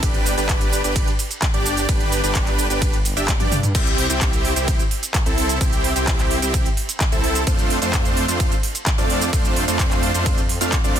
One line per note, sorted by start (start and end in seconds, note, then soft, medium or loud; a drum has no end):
0.03 0.35 G1 loud
0.03 0.35 D4 medium
0.03 0.35 G4 medium
0.03 0.35 B4 loud
0.03 kick loud
0.03 closed hi-hat loud
0.03 ride medium
0.03 shaker soft
0.14 closed hi-hat soft
0.26 open hi-hat loud
0.26 shaker medium
0.38 0.82 G1 loud
0.38 0.81 D4 loud
0.38 0.81 G4 medium
0.38 0.81 B4 loud
0.38 closed hi-hat soft
0.38 shaker medium
0.49 kick loud
0.49 clap loud
0.49 closed hi-hat medium
0.49 ride medium
0.49 shaker soft
0.61 closed hi-hat soft
0.73 open hi-hat medium
0.73 shaker medium
0.84 1.08 G1 loud
0.84 1.10 D4 medium
0.84 1.10 G4 medium
0.84 1.10 B4 medium
0.84 closed hi-hat soft
0.84 shaker soft
0.96 kick loud
0.96 closed hi-hat loud
0.96 ride medium
0.96 shaker soft
1.07 closed hi-hat soft
1.19 open hi-hat loud
1.19 shaker medium
1.31 closed hi-hat soft
1.31 shaker medium
1.42 kick loud
1.42 clap loud
1.42 closed hi-hat loud
1.42 ride medium
1.42 shaker soft
1.54 1.86 G1 loud
1.54 1.86 D4 loud
1.54 1.86 G4 medium
1.54 1.86 D5 loud
1.54 closed hi-hat soft
1.66 open hi-hat medium
1.66 shaker medium
1.77 closed hi-hat soft
1.77 shaker soft
1.89 2.21 G1 loud
1.89 2.21 D4 medium
1.89 2.21 B4 loud
1.89 kick loud
1.89 closed hi-hat loud
1.89 ride medium
1.89 shaker soft
2.00 closed hi-hat soft
2.12 open hi-hat loud
2.12 shaker medium
2.24 2.68 G1 loud
2.24 2.67 D4 loud
2.24 2.67 G4 medium
2.24 2.67 B4 loud
2.24 closed hi-hat soft
2.24 shaker soft
2.35 kick loud
2.35 clap loud
2.35 closed hi-hat loud
2.35 ride medium
2.35 shaker soft
2.47 clap soft
2.47 closed hi-hat soft
2.58 open hi-hat medium
2.58 shaker medium
2.70 3.14 G1 loud
2.70 2.96 D4 medium
2.70 2.96 G4 medium
2.70 2.96 B4 medium
2.70 closed hi-hat soft
2.70 shaker soft
2.82 kick loud
2.82 closed hi-hat loud
2.82 ride medium
2.82 shaker soft
2.93 closed hi-hat soft
3.05 open hi-hat loud
3.05 shaker medium
3.17 3.38 G1 medium
3.17 3.33 D4 medium
3.17 3.33 G4 medium
3.17 3.33 E5 medium
3.17 closed hi-hat soft
3.17 shaker soft
3.28 kick loud
3.28 clap loud
3.28 closed hi-hat loud
3.28 high tom medium
3.28 ride medium
3.28 shaker soft
3.40 3.73 G2 loud
3.40 3.56 D4 loud
3.40 3.56 G4 medium
3.40 3.56 D5 loud
3.40 closed hi-hat soft
3.40 high tom medium
3.52 open hi-hat medium
3.52 mid tom medium
3.52 shaker medium
3.63 closed hi-hat soft
3.63 mid tom medium
3.63 shaker soft
3.75 4.07 C2 loud
3.75 4.07 C4 medium
3.75 4.07 E4 medium
3.75 4.07 G4 loud
3.75 kick loud
3.75 closed hi-hat medium
3.75 crash loud
3.75 ride medium
3.75 shaker medium
3.87 closed hi-hat soft
3.87 shaker soft
3.98 open hi-hat loud
4.10 4.54 C2 loud
4.10 4.53 C4 medium
4.10 4.53 E4 medium
4.10 4.54 G4 loud
4.10 closed hi-hat medium
4.10 shaker medium
4.21 kick loud
4.21 clap loud
4.21 closed hi-hat medium
4.21 ride medium
4.21 shaker medium
4.33 closed hi-hat soft
4.33 shaker soft
4.45 open hi-hat loud
4.56 4.80 C2 loud
4.56 4.82 C4 medium
4.56 4.83 E4 medium
4.56 4.83 G4 medium
4.56 closed hi-hat medium
4.56 shaker medium
4.68 kick loud
4.68 closed hi-hat medium
4.68 ride medium
4.68 shaker medium
4.79 closed hi-hat soft
4.79 shaker soft
4.91 open hi-hat loud
5.03 closed hi-hat medium
5.03 shaker medium
5.14 kick loud
5.14 clap loud
5.14 closed hi-hat medium
5.14 ride medium
5.14 shaker medium
5.26 5.59 C2 loud
5.26 5.58 C4 loud
5.26 5.58 E4 loud
5.26 5.58 A4 loud
5.26 closed hi-hat soft
5.26 shaker soft
5.38 open hi-hat loud
5.49 closed hi-hat medium
5.49 shaker medium
5.61 5.94 C2 loud
5.61 5.93 C4 medium
5.61 5.93 G4 loud
5.61 kick loud
5.61 closed hi-hat medium
5.61 ride medium
5.61 shaker medium
5.73 closed hi-hat soft
5.73 shaker soft
5.84 open hi-hat loud
5.96 6.40 C2 loud
5.96 6.39 C4 loud
5.96 6.39 E4 medium
5.96 6.39 G4 loud
5.96 closed hi-hat medium
5.96 shaker medium
6.07 kick loud
6.07 clap loud
6.07 closed hi-hat medium
6.07 ride medium
6.07 shaker medium
6.19 clap soft
6.19 closed hi-hat soft
6.19 shaker soft
6.31 open hi-hat loud
6.42 6.66 C2 loud
6.42 6.68 C4 medium
6.42 6.68 E4 medium
6.42 6.68 G4 medium
6.42 closed hi-hat medium
6.42 shaker medium
6.54 kick loud
6.54 closed hi-hat medium
6.54 ride medium
6.54 shaker medium
6.66 closed hi-hat soft
6.66 shaker soft
6.77 open hi-hat loud
6.89 closed hi-hat medium
6.89 shaker medium
7.00 kick loud
7.00 clap loud
7.00 closed hi-hat medium
7.00 ride medium
7.00 shaker medium
7.12 7.45 C2 loud
7.12 7.44 C4 loud
7.12 7.44 E4 medium
7.12 7.44 A4 loud
7.12 closed hi-hat soft
7.12 shaker soft
7.24 open hi-hat loud
7.35 closed hi-hat medium
7.35 shaker medium
7.47 7.80 F2 loud
7.47 7.79 A3 medium
7.47 7.79 C4 medium
7.47 7.79 D4 medium
7.47 7.79 C5 loud
7.47 kick loud
7.47 closed hi-hat medium
7.47 ride medium
7.47 shaker medium
7.59 closed hi-hat soft
7.59 shaker soft
7.70 open hi-hat loud
7.82 8.26 F2 loud
7.82 8.26 A3 loud
7.82 8.26 C4 medium
7.82 8.26 D4 medium
7.82 8.26 F4 medium
7.82 8.26 C5 loud
7.82 closed hi-hat medium
7.82 shaker medium
7.93 kick loud
7.93 clap loud
7.93 closed hi-hat medium
7.93 ride medium
7.93 shaker medium
8.05 closed hi-hat soft
8.05 shaker soft
8.17 open hi-hat loud
8.28 8.52 F2 medium
8.28 8.55 A3 medium
8.28 8.55 C4 medium
8.28 8.55 D4 medium
8.28 8.55 F4 medium
8.28 8.55 C5 loud
8.28 closed hi-hat medium
8.28 shaker medium
8.40 kick loud
8.40 closed hi-hat medium
8.40 ride medium
8.40 shaker medium
8.52 closed hi-hat soft
8.52 shaker soft
8.63 open hi-hat loud
8.75 closed hi-hat medium
8.75 shaker medium
8.86 kick loud
8.86 clap loud
8.86 closed hi-hat medium
8.86 ride medium
8.86 shaker medium
8.98 9.31 F2 loud
8.98 9.30 A3 loud
8.98 9.30 C4 medium
8.98 9.30 D4 medium
8.98 9.30 F4 medium
8.98 9.30 D5 loud
8.98 closed hi-hat soft
8.98 shaker soft
9.10 open hi-hat loud
9.21 closed hi-hat medium
9.21 shaker medium
9.33 9.66 F2 loud
9.33 9.65 A3 medium
9.33 9.65 C4 medium
9.33 9.65 F4 medium
9.33 9.65 C5 loud
9.33 kick loud
9.33 closed hi-hat medium
9.33 ride medium
9.33 shaker medium
9.45 closed hi-hat soft
9.45 shaker soft
9.56 open hi-hat loud
9.68 10.12 F2 loud
9.68 10.12 A3 loud
9.68 10.12 C4 medium
9.68 10.12 D4 medium
9.68 10.12 F4 medium
9.68 10.12 C5 loud
9.68 closed hi-hat medium
9.68 shaker medium
9.79 kick loud
9.79 clap loud
9.79 closed hi-hat medium
9.79 ride medium
9.79 shaker medium
9.91 clap soft
9.91 closed hi-hat soft
9.91 shaker soft
10.03 open hi-hat loud
10.14 10.59 F2 loud
10.14 10.41 A3 medium
10.14 10.41 C4 medium
10.14 10.41 D4 medium
10.14 10.41 F4 medium
10.14 10.41 C5 medium
10.14 closed hi-hat soft
10.14 shaker medium
10.26 kick loud
10.26 closed hi-hat medium
10.26 ride medium
10.26 shaker medium
10.38 closed hi-hat soft
10.38 shaker soft
10.49 open hi-hat loud
10.61 10.82 F2 medium
10.61 10.77 A3 medium
10.61 10.77 C4 medium
10.61 10.77 D4 medium
10.61 10.77 F4 medium
10.61 10.77 F5 loud
10.61 closed hi-hat medium
10.61 shaker medium
10.72 kick loud
10.72 clap loud
10.72 closed hi-hat medium
10.72 ride medium
10.72 shaker medium
10.84 11.00 F2 loud
10.84 11.00 A3 loud
10.84 11.00 C4 medium
10.84 11.00 D4 medium
10.84 11.00 F4 medium
10.84 11.00 D5 loud
10.84 closed hi-hat soft
10.84 shaker soft
10.96 open hi-hat loud